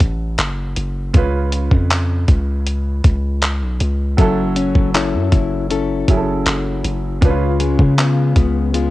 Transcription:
0.00 0.37 A1 medium
0.00 1.10 F#3 medium
0.00 1.11 C#4 medium
0.00 1.11 E4 medium
0.00 1.12 A4 medium
0.00 kick medium
0.00 closed hi-hat medium
0.38 0.75 F#1 loud
0.38 clap medium
0.38 closed hi-hat medium
0.76 1.13 F#1 loud
0.76 closed hi-hat medium
1.14 1.69 C#2 loud
1.14 4.14 C#3 medium
1.14 4.15 C#4 medium
1.14 4.15 F4 medium
1.14 kick loud
1.14 closed hi-hat medium
1.18 4.16 B4 medium
1.52 closed hi-hat medium
1.71 2.26 F2 loud
1.71 kick medium
1.90 clap loud
1.90 closed hi-hat medium
2.28 3.01 C#2 loud
2.28 kick loud
2.28 closed hi-hat medium
2.67 closed hi-hat medium
3.04 3.63 C#2 loud
3.04 kick loud
3.04 closed hi-hat medium
3.42 clap loud
3.42 closed hi-hat medium
3.62 3.80 B1 loud
3.80 4.17 C#2 loud
3.80 closed hi-hat medium
4.17 4.73 F#1 loud
4.17 6.04 F#3 medium
4.17 7.22 F#3 medium
4.17 6.04 C#4 medium
4.17 6.05 E4 medium
4.17 4.94 A4 medium
4.17 kick loud
4.17 closed hi-hat medium
4.21 6.06 A4 medium
4.56 4.94 C#4 medium
4.56 closed hi-hat medium
4.75 5.15 F#1 loud
4.75 kick medium
4.94 5.70 C#4 medium
4.94 5.31 E4 medium
4.94 5.70 A4 medium
4.94 clap loud
4.94 closed hi-hat medium
5.14 5.32 F#2 loud
5.32 6.05 F#1 loud
5.32 5.69 E4 medium
5.32 kick loud
5.32 closed hi-hat medium
5.70 7.98 C#4 medium
5.70 7.22 E4 medium
5.70 7.30 A4 medium
5.70 closed hi-hat medium
6.08 6.45 F#1 loud
6.08 7.22 F#3 medium
6.08 7.21 C#4 medium
6.08 7.23 E4 medium
6.08 6.16 G#4 soft
6.08 kick medium
6.08 closed hi-hat medium
6.17 7.26 A4 medium
6.46 6.83 F#1 loud
6.46 clap medium
6.46 closed hi-hat medium
6.84 7.21 F#1 loud
6.84 closed hi-hat medium
7.21 7.77 C#2 loud
7.21 8.90 C#3 medium
7.21 8.90 C#4 medium
7.21 7.29 D4 soft
7.21 7.98 F4 medium
7.21 8.90 B4 medium
7.21 kick loud
7.21 closed hi-hat medium
7.30 8.90 F4 medium
7.60 7.97 G#3 medium
7.60 closed hi-hat medium
7.79 8.34 C#3 medium
7.79 kick medium
7.98 8.73 G#3 medium
7.98 8.35 B3 medium
7.98 8.74 F4 medium
7.98 clap loud
7.98 closed hi-hat medium
8.36 8.90 C#2 loud
8.36 8.73 B3 medium
8.36 kick medium
8.36 closed hi-hat medium
8.74 8.90 G#3 medium
8.74 8.90 B3 medium
8.74 8.90 F4 medium
8.74 closed hi-hat medium

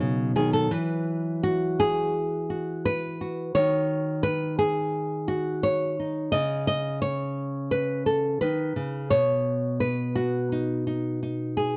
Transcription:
0.00 0.67 B2 medium
0.00 0.35 C#3 medium
0.00 2.13 F#3 medium
0.00 0.67 D#4 soft
0.00 0.72 F#4 medium
0.36 0.70 D#3 medium
0.36 0.53 G#4 medium
0.53 0.71 A4 medium
0.71 3.50 E3 medium
0.71 1.78 B4 medium
1.43 2.49 F#4 medium
1.80 2.85 G#4 medium
2.50 3.21 F#4 soft
2.85 3.54 B4 medium
3.21 4.62 F#4 soft
3.55 6.29 D#3 medium
3.55 4.23 C#5 medium
4.23 4.58 B4 medium
4.59 5.63 G#4 medium
5.28 5.98 F#4 medium
5.63 6.31 C#5 medium
5.99 6.34 D#4 soft
6.32 8.41 C#3 medium
6.32 6.66 D#5 loud
6.67 7.01 D#5 loud
7.02 8.41 C#5 loud
7.71 8.06 B4 medium
8.06 8.41 A4 medium
8.41 8.76 D#3 medium
8.41 9.11 B4 medium
8.76 9.11 C#3 medium
9.10 11.77 B2 medium
9.10 9.80 C#5 medium
9.80 10.87 B4 medium
10.15 11.77 F#4 medium
10.52 10.86 D#4 soft
10.87 11.21 D#4 soft
11.23 11.77 D#4 soft
11.57 11.77 G#4 medium

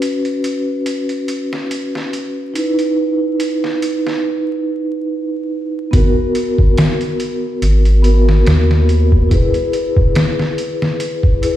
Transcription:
0.00 2.50 C#4 medium
0.00 2.51 F#4 medium
0.00 2.52 B4 medium
0.00 closed hi-hat medium
0.25 closed hi-hat soft
0.44 closed hi-hat medium
0.86 closed hi-hat medium
1.09 closed hi-hat soft
1.28 closed hi-hat medium
1.53 snare soft
1.71 closed hi-hat medium
1.95 snare soft
2.13 closed hi-hat medium
2.54 5.88 D#4 medium
2.54 5.89 E4 medium
2.54 closed hi-hat medium
2.58 5.90 B4 medium
2.79 closed hi-hat soft
3.40 closed hi-hat medium
3.64 snare soft
3.82 closed hi-hat medium
4.07 snare soft
5.91 6.14 G#1 loud
5.91 7.99 B3 medium
5.91 8.00 F#4 medium
5.91 8.01 A#4 medium
5.91 kick loud
5.91 closed hi-hat medium
6.35 closed hi-hat medium
6.58 6.75 G#1 loud
6.58 kick medium
6.78 snare loud
6.78 closed hi-hat medium
7.01 closed hi-hat soft
7.20 closed hi-hat medium
7.62 8.43 G#1 medium
7.62 closed hi-hat medium
7.85 closed hi-hat soft
8.03 8.19 B3 medium
8.03 8.20 F#4 medium
8.03 8.21 A#4 loud
8.03 closed hi-hat medium
8.29 snare soft
8.46 9.28 D#2 medium
8.46 snare loud
8.46 closed hi-hat medium
8.71 snare soft
8.89 closed hi-hat medium
9.12 kick medium
9.29 9.52 E1 medium
9.29 11.37 E4 medium
9.29 11.38 G#4 medium
9.29 kick loud
9.29 closed hi-hat medium
9.34 11.39 B4 loud
9.54 closed hi-hat soft
9.73 closed hi-hat medium
9.96 10.14 E1 medium
9.96 kick loud
10.15 snare loud
10.15 closed hi-hat medium
10.39 snare soft
10.58 closed hi-hat medium
10.82 snare soft
11.00 closed hi-hat medium
11.23 kick loud
11.42 11.57 E4 medium
11.42 11.57 G#4 medium
11.42 11.57 B4 loud
11.42 closed hi-hat medium

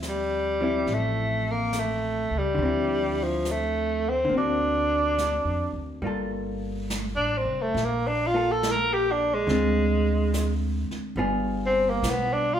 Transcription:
0.00 0.83 D2 medium
0.00 0.59 F3 soft
0.00 0.60 C4 soft
0.00 0.62 E4 soft
0.00 snare soft
0.00 hi-hat pedal soft
0.09 0.95 G3 medium
0.61 2.57 F3 soft
0.61 2.59 C4 soft
0.61 2.60 E4 soft
0.86 2.27 A1 medium
0.86 brush sweep soft
0.86 snare soft
0.94 1.52 A3 medium
1.51 1.80 A#3 medium
1.73 snare soft
1.73 hi-hat pedal soft
1.79 2.39 A3 medium
2.31 2.56 C#2 medium
2.38 3.25 G3 medium
2.54 4.26 D2 medium
2.54 4.24 D3 soft
2.59 4.29 F3 soft
2.59 4.32 C4 soft
2.59 brush sweep soft
2.65 4.34 E4 soft
3.23 3.53 F3 medium
3.45 snare soft
3.45 hi-hat pedal soft
3.51 4.10 A3 medium
4.09 4.33 C4 medium
4.25 6.01 D3 soft
4.29 5.42 D2 medium
4.29 6.02 A#3 soft
4.29 brush sweep soft
4.34 6.03 C4 soft
4.34 6.05 F#4 soft
4.38 5.76 D4 medium
5.18 snare soft
5.18 hi-hat pedal soft
5.45 5.72 F2 soft
5.73 6.01 D2 medium
6.02 7.14 G1 medium
6.02 9.47 G3 soft
6.02 8.33 A#3 soft
6.02 8.34 F4 soft
6.02 brush sweep soft
6.07 8.35 A4 soft
6.90 snare soft
6.90 hi-hat pedal soft
7.16 7.44 A1 medium
7.16 7.39 D4 medium
7.38 7.64 C4 medium
7.45 7.73 F1 medium
7.62 7.86 A3 medium
7.74 9.43 A#1 medium
7.74 brush sweep soft
7.74 snare soft
7.84 8.09 A#3 medium
8.07 8.28 D4 medium
8.27 8.53 F4 medium
8.34 9.47 A#3 soft
8.34 9.48 F4 soft
8.34 9.48 A4 soft
8.51 8.73 A4 medium
8.63 snare soft
8.63 hi-hat pedal medium
8.72 8.95 A#4 medium
8.94 9.13 G4 medium
9.11 9.36 D4 medium
9.34 10.62 G#3 medium
9.47 10.87 D2 medium
9.47 11.18 D3 soft
9.47 11.17 G#3 soft
9.47 11.18 C4 soft
9.47 brush sweep soft
9.47 snare soft
9.51 11.17 F4 soft
10.34 snare soft
10.34 hi-hat pedal medium
10.90 muted upright bass stroke soft
10.90 snare soft
11.16 11.98 G1 medium
11.16 12.60 G3 soft
11.16 12.60 B3 soft
11.16 12.60 F4 medium
11.16 12.60 G#4 medium
11.16 brush sweep soft
11.66 11.91 C4 medium
11.90 12.11 A#3 medium
12.02 12.60 B1 medium
12.02 snare soft
12.02 hi-hat pedal medium
12.10 12.35 B3 medium
12.33 12.55 D4 medium
12.54 12.60 F4 medium

